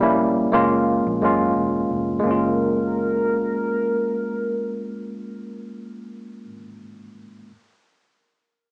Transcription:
0.00 0.48 A#1 loud
0.00 0.53 G3 loud
0.00 0.02 A#3 medium
0.00 0.38 A#3 medium
0.00 0.03 C#4 medium
0.00 0.38 C#4 medium
0.00 0.03 E4 loud
0.00 0.38 E4 loud
0.52 0.99 F#1 medium
0.52 1.08 G#3 loud
0.52 1.09 A#3 loud
0.52 1.09 C#4 medium
0.52 1.09 F4 loud
1.06 1.19 A#1 loud
1.21 1.50 F#2 loud
1.21 1.93 G#3 medium
1.21 1.94 A#3 medium
1.21 1.94 C#4 medium
1.21 1.95 F4 loud
1.56 1.85 E1 medium
1.91 2.20 F1 medium
2.20 6.44 G#3 medium
2.20 6.45 A#3 medium
2.25 6.46 F#1 medium
2.25 6.47 C#4 medium
2.25 5.76 A#4 loud
2.31 6.49 F4 medium

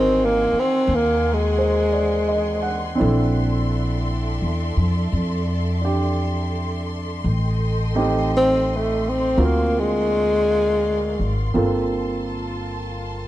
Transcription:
0.00 0.48 G#1 medium
0.00 0.26 C4 medium
0.00 2.94 C4 medium
0.00 2.99 D#4 soft
0.00 3.01 F#4 soft
0.00 2.96 A#4 medium
0.00 3.03 A#4 medium
0.00 2.96 F#5 medium
0.00 2.96 G#5 medium
0.00 13.28 C6 medium
0.25 0.61 A#3 medium
0.53 muted upright bass stroke soft
0.60 0.97 C4 medium
0.87 2.96 D#2 medium
0.95 1.35 A#3 medium
1.33 2.94 G#3 medium
1.58 2.14 C5 soft
1.93 2.61 D5 soft
2.28 2.84 D#5 soft
2.62 3.19 F#5 soft
2.95 7.22 C4 soft
2.95 5.80 D4 soft
2.95 7.24 E4 soft
2.95 7.20 A4 medium
2.95 7.20 E5 soft
3.00 4.38 A#1 medium
3.00 7.25 A4 medium
3.00 7.21 D5 medium
4.42 4.75 E2 medium
4.77 5.09 F2 medium
5.12 7.21 F2 medium
5.81 7.24 D4 soft
5.81 7.25 G4 soft
7.23 9.34 A1 medium
7.23 9.35 A4 medium
7.23 9.35 D#5 medium
7.23 9.35 G5 medium
7.95 9.37 A3 soft
7.95 9.36 C4 soft
7.95 9.38 D#4 soft
7.95 9.38 G4 medium
8.37 8.78 C4 medium
8.76 9.10 A3 medium
9.09 9.46 C4 medium
9.37 11.15 D2 medium
9.37 11.52 A#3 soft
9.37 11.53 C4 soft
9.37 11.53 F4 soft
9.37 11.55 F#4 soft
9.37 11.52 A#4 medium
9.37 11.52 D5 soft
9.37 11.52 F5 medium
9.45 9.81 A#3 medium
9.79 11.45 G#3 medium
11.19 11.52 G#1 soft
11.54 13.28 G1 medium
11.54 13.28 A#3 soft
11.54 13.28 C4 soft
11.54 13.28 F4 medium
11.54 13.28 F4 soft
11.54 13.28 A4 soft
11.54 13.28 A5 medium

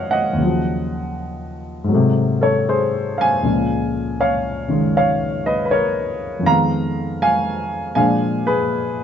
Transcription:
0.00 0.35 B2 soft
0.00 0.39 F3 soft
0.00 0.37 A#3 soft
0.00 0.38 B3 soft
0.00 0.39 C#4 soft
0.00 0.38 D#4 soft
0.00 0.11 C#5 medium
0.00 0.13 D#5 medium
0.00 0.15 F5 medium
0.00 0.11 F#5 medium
0.11 1.60 D#5 medium
0.11 1.59 F#5 medium
0.33 1.87 D#2 soft
0.37 1.89 C#3 soft
0.37 1.87 F#3 soft
0.45 1.93 F3 soft
1.84 3.40 G#2 soft
1.84 3.42 F#3 soft
1.91 3.45 C3 medium
1.91 3.44 A3 soft
2.41 2.65 A4 medium
2.41 2.68 C#5 medium
2.69 3.16 G#4 medium
2.69 3.16 C5 medium
3.18 4.15 F5 medium
3.18 4.17 G#5 medium
3.43 6.45 C#2 soft
3.43 6.46 A#2 soft
3.43 4.67 C#3 soft
3.43 6.45 F3 soft
4.20 4.91 C#5 medium
4.20 4.96 F5 medium
4.68 6.45 C#3 soft
4.68 6.42 D#3 soft
4.68 6.45 G#3 soft
4.97 5.43 C#5 medium
4.97 5.43 F5 medium
5.46 5.51 B4 medium
5.46 5.51 D#5 medium
5.65 5.70 B4 medium
5.71 6.43 A#4 medium
5.71 6.48 C#5 medium
6.39 7.93 F2 soft
6.39 7.95 D#3 soft
6.46 7.95 G#3 soft
6.46 7.17 F5 medium
6.46 7.17 A#5 medium
6.50 7.99 B3 soft
7.22 7.93 F5 medium
7.22 7.94 G#5 medium
7.95 9.04 A#2 soft
7.95 9.04 F3 soft
7.95 9.04 G#3 soft
7.95 9.04 D4 medium
7.95 8.44 F5 medium
7.95 8.48 G#5 medium
8.47 9.04 G#4 medium
8.47 9.04 B4 medium

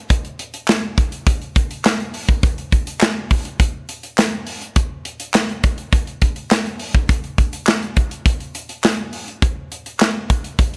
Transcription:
0.10 kick loud
0.10 closed hi-hat loud
0.25 closed hi-hat soft
0.39 closed hi-hat medium
0.54 closed hi-hat medium
0.68 snare loud
0.68 clap medium
0.68 closed hi-hat loud
0.98 kick medium
0.98 closed hi-hat medium
1.12 closed hi-hat soft
1.27 kick loud
1.27 closed hi-hat medium
1.42 closed hi-hat soft
1.56 kick medium
1.56 closed hi-hat medium
1.71 closed hi-hat soft
1.85 snare loud
1.85 clap medium
1.85 closed hi-hat loud
2.00 closed hi-hat soft
2.14 open hi-hat medium
2.29 kick medium
2.29 closed hi-hat soft
2.43 kick loud
2.43 closed hi-hat medium
2.58 closed hi-hat soft
2.72 kick medium
2.72 closed hi-hat medium
2.87 closed hi-hat medium
3.01 snare loud
3.01 clap medium
3.01 closed hi-hat medium
3.31 kick medium
3.31 open hi-hat medium
3.45 closed hi-hat soft
3.60 kick loud
3.60 closed hi-hat loud
3.89 closed hi-hat medium
4.03 closed hi-hat soft
4.18 snare loud
4.18 clap medium
4.18 closed hi-hat loud
4.47 open hi-hat medium
4.62 closed hi-hat soft
4.76 kick loud
4.76 closed hi-hat loud
5.05 closed hi-hat medium
5.20 closed hi-hat medium
5.34 snare loud
5.34 clap medium
5.34 closed hi-hat loud
5.49 closed hi-hat soft
5.63 kick medium
5.63 closed hi-hat medium
5.78 closed hi-hat soft
5.93 kick loud
5.93 closed hi-hat medium
6.07 closed hi-hat soft
6.22 kick medium
6.22 closed hi-hat medium
6.36 closed hi-hat soft
6.51 snare loud
6.51 clap medium
6.51 closed hi-hat loud
6.66 closed hi-hat soft
6.79 open hi-hat medium
6.95 kick medium
6.95 closed hi-hat soft
7.09 kick loud
7.09 closed hi-hat medium
7.24 closed hi-hat soft
7.38 kick medium
7.38 closed hi-hat medium
7.53 closed hi-hat medium
7.67 snare loud
7.67 clap medium
7.67 closed hi-hat loud
7.82 closed hi-hat soft
7.97 kick medium
7.97 closed hi-hat medium
8.11 closed hi-hat soft
8.26 kick loud
8.26 closed hi-hat medium
8.40 closed hi-hat soft
8.55 closed hi-hat medium
8.69 closed hi-hat medium
8.84 snare loud
8.84 clap medium
8.84 closed hi-hat loud
9.13 open hi-hat medium
9.28 closed hi-hat soft
9.42 kick loud
9.42 closed hi-hat medium
9.72 closed hi-hat medium
9.86 closed hi-hat medium
10.00 snare loud
10.00 clap medium
10.00 closed hi-hat loud
10.30 kick medium
10.30 closed hi-hat medium
10.44 closed hi-hat soft
10.59 kick loud
10.59 closed hi-hat medium
10.74 closed hi-hat soft

